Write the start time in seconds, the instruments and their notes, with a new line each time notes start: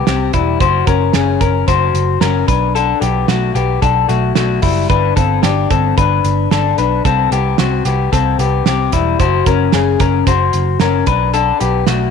0.07 picked electric bass C2, clean electric guitar C4 G4, snare, closed hi-hat
0.33 picked electric bass E1, clean electric guitar G3 E4, kick, closed hi-hat
0.60 picked electric bass F#1, clean electric guitar F#4 C5, kick, closed hi-hat
0.87 picked electric bass F#1, clean electric guitar C#4 A#4, kick, closed hi-hat
1.13 picked electric bass F#1, clean electric guitar C#4 G#4, snare, closed hi-hat
1.41 picked electric bass F#1, clean electric guitar C#4 A#4, kick, closed hi-hat
1.68 picked electric bass F#1, clean electric guitar F#4 C5, kick, closed hi-hat
1.94 picked electric bass F#1, closed hi-hat
2.21 picked electric bass F#1, clean electric guitar C#4 A#4, snare, closed hi-hat
2.48 picked electric bass B1, clean electric guitar D4 B4, kick, closed hi-hat
2.75 clean electric guitar D4 A4, closed hi-hat
3.01 picked electric bass B1, clean electric guitar B3 G4, closed hi-hat
3.28 picked electric bass B1, clean electric guitar A3 F#4, snare, closed hi-hat
3.55 picked electric bass B1, clean electric guitar B3 G4, closed hi-hat
3.82 picked electric bass B1, clean electric guitar D4 A4, kick, closed hi-hat
4.09 picked electric bass B1, clean electric guitar A3 F#4, closed hi-hat
4.35 picked electric bass B1, clean electric guitar A3 F#4, snare, closed hi-hat
4.62 picked electric bass F#1, clean electric guitar G3 E4, kick, open hi-hat
4.90 picked electric bass G1, clean electric guitar D4 B4, kick, closed hi-hat
5.16 picked electric bass G1, clean electric guitar C4 A4, kick, closed hi-hat
5.43 picked electric bass G1, clean electric guitar D4 G4, snare, closed hi-hat
5.70 picked electric bass G1, clean electric guitar C4 A4, kick, closed hi-hat
5.98 picked electric bass G1, clean electric guitar D4 B4, kick, closed hi-hat
6.24 picked electric bass G1, closed hi-hat
6.51 picked electric bass G1, clean electric guitar D4 A4, snare, closed hi-hat
6.78 picked electric bass B1, clean electric guitar D4 B4, closed hi-hat
7.05 picked electric bass C2, clean electric guitar C4 A4, kick, closed hi-hat
7.32 picked electric bass C2, clean electric guitar B3 G4, closed hi-hat
7.58 picked electric bass C2, clean electric guitar C4 F#4, snare, closed hi-hat
7.85 picked electric bass C2, clean electric guitar B3 G4, closed hi-hat
8.12 picked electric bass C2, clean electric guitar C4 A4, kick, closed hi-hat
8.39 picked electric bass C2, clean electric guitar B3 G4, closed hi-hat
8.66 picked electric bass C2, clean electric guitar C4 G4, snare, closed hi-hat
8.92 picked electric bass E1, clean electric guitar G3 E4, kick, closed hi-hat
9.19 picked electric bass F#1, clean electric guitar F#4 C5, kick, closed hi-hat
9.46 picked electric bass F#1, clean electric guitar C#4 A#4, kick, closed hi-hat
9.72 picked electric bass F#1, clean electric guitar C#4 G#4, snare, closed hi-hat
10.00 picked electric bass F#1, clean electric guitar C#4 A#4, kick, closed hi-hat
10.27 picked electric bass F#1, clean electric guitar F#4 C5, kick, closed hi-hat
10.53 picked electric bass F#1, closed hi-hat
10.80 picked electric bass F#1, clean electric guitar C#4 A#4, snare, closed hi-hat
11.06 picked electric bass B1, clean electric guitar D4 B4, kick, closed hi-hat
11.34 clean electric guitar D4 A4, closed hi-hat
11.60 picked electric bass B1, clean electric guitar B3 G4, closed hi-hat
11.87 picked electric bass B1, clean electric guitar A3 F#4, snare, closed hi-hat